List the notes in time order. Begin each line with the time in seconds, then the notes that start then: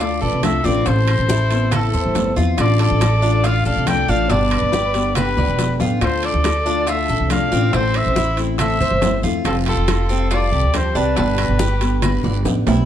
Already playing: D2
0.00 D3 A3 D4 F4 A4 D5, high bongo, high conga, high timbale, long guiro, maracas
0.21 A1 A4 B4 D5, high conga
0.33 C2
0.43 D3 A3 D4 F4 A4 E5, high bongo, low bongo, high conga, high timbale, low timbale, short guiro, claves, maracas
0.64 A1 A3 C4 D4 F4 B4 D5, high bongo, high conga, short guiro, maracas
0.86 A1 E3 C4 A4 C5, high bongo, high conga, high timbale, long guiro, maracas
1.07 high bongo, high conga, high timbale, claves
1.19 A1
1.29 E4, muted nylon-string guitar stroke, high bongo, high conga, short guiro, maracas
1.50 B3 C4 E4, high bongo, high conga, high timbale, short guiro, maracas
1.71 E3 B3 C4 E4 A4, high bongo, high conga, low conga, high timbale, long guiro, claves, maracas
1.93 E2 C5, high conga, maracas
2.05 G1
2.15 E3 B3 C4 E4, high bongo, low bongo, high conga, high timbale, low timbale, short guiro, maracas
2.36 E2 B3 C4 E4 F4, high bongo, high conga, short guiro, maracas
2.58 A1 D3 A3 D4 F4 A4 D5, high bongo, high conga, high timbale, long guiro, claves, maracas
2.79 A4 D5, high bongo, high timbale
2.91 A1
3.01 muted nylon-string guitar stroke, high bongo, high conga, high timbale, short guiro, claves, maracas
3.22 A3 D4 F4, high bongo, high conga, short guiro, maracas
3.44 D3 A3 D4 F4 D5 F5, high bongo, high conga, high timbale, long guiro, maracas
3.65 A1 A4 D5 F5, high conga, maracas
3.76 C2
3.86 D3 A3 D4 F4 D5 G5, high bongo, low bongo, high conga, high timbale, short guiro, claves, maracas
4.08 A1 A3 D4 F4 D5 F5, high bongo, high conga, short guiro, maracas
4.29 G1 B2 D3 G3 B3 D4 G4 B4 D5, high bongo, high conga, high timbale, long guiro, maracas
4.51 high bongo, high conga, high timbale, claves
4.62 G1
4.72 G4, muted nylon-string guitar stroke, high bongo, high conga, short guiro, maracas
4.93 D3 G3 B3 G4, high bongo, high conga, high timbale, short guiro, maracas
5.15 D3 G3 B3 G4 B4, high bongo, high conga, low conga, high timbale, long guiro, claves, maracas
5.37 D2 D5, high bongo, high conga, low conga
5.48 E1
5.59 D3 G3 B3 G4, high bongo, high conga, high timbale, short guiro, maracas
5.80 A1 D3 G3 B3 F4 G4, low bongo, high conga, short guiro, maracas
6.01 D2 D3 A3 D4 F4 A4 C5, high bongo, high conga, high timbale, long guiro, claves, maracas
6.23 A4 D5, high bongo, high conga, high timbale
6.34 D2
6.44 muted nylon-string guitar stroke, high bongo, high conga, high timbale, short guiro, claves, maracas
6.65 A3 D4 F4, high bongo, high conga, short guiro, maracas
6.87 D3 A3 D4 F4 A4 E5, high bongo, high conga, high timbale, long guiro, maracas
7.09 A1 A4, high conga, maracas
7.20 C2
7.30 D3 A3 D4 F4 D5 F5, high bongo, low bongo, high conga, high timbale, short guiro, claves, maracas
7.51 A1 A3 C4 D4 F4, high bongo, short guiro, maracas
7.73 A1 E3 A3 C4 E4 A4 C5, high bongo, high conga, high timbale, long guiro, maracas
7.94 C5 E5, high bongo, high conga, high timbale, claves
8.06 A1
8.16 E4, muted nylon-string guitar stroke, high bongo, high conga, short guiro, maracas
8.37 A3 C4 E4, high bongo, high conga, high timbale, short guiro, maracas
8.58 E3 A3 C4 E4 A4 C5 E5, high bongo, high conga, low conga, high timbale, long guiro, claves, maracas
8.80 E2 C5, high conga, low conga, maracas
8.91 G1
9.02 E3 A3 C4 E4, high bongo, low bongo, high conga, high timbale, low timbale, short guiro, maracas
9.23 E2 A3 C4 E4 F4, high bongo, high conga, short guiro, maracas
9.45 F1 F3 G3 C4 F4 G4 A4, high bongo, high timbale, long guiro, claves, maracas
9.66 F4 G4 A4, high bongo, high conga, high timbale
9.77 F1
9.88 muted nylon-string guitar stroke, high bongo, high conga, high timbale, short guiro, claves, maracas
10.09 G3 C4 G4, high bongo, high conga, short guiro, maracas
10.31 F3 G3 C4 F4 G4 A4 D5, high bongo, high conga, high timbale, long guiro, maracas
10.52 C2 G4, high conga
10.63 D2
10.74 F3 G3 C4 G4 A4 C5, high bongo, low bongo, high conga, high timbale, short guiro, claves, maracas
10.95 C2 G3 C4 D4 G4 B4, high bongo, high conga, short guiro, maracas
11.16 G1 B2 D3 G3 B3 D4 G4, high bongo, high conga, high timbale, long guiro, maracas
11.38 high bongo, high conga, high timbale, claves
11.49 G1
11.59 G4, muted nylon-string guitar stroke, high bongo, high conga, short guiro, maracas
11.81 D3 G3 B3 G4, high bongo, high conga, high timbale, short guiro, maracas
12.02 D3 G3 B3 G4 B4, high bongo, high conga, low conga, high timbale, long guiro, claves, maracas
12.24 G1 D5, high bongo, high conga, low conga
12.45 A1 D3 G3 B3 G4, low bongo, high conga, high timbale, short guiro, maracas
12.67 B1 D3 G3 B3 E4 G4, low bongo, high conga, low timbale, short guiro, maracas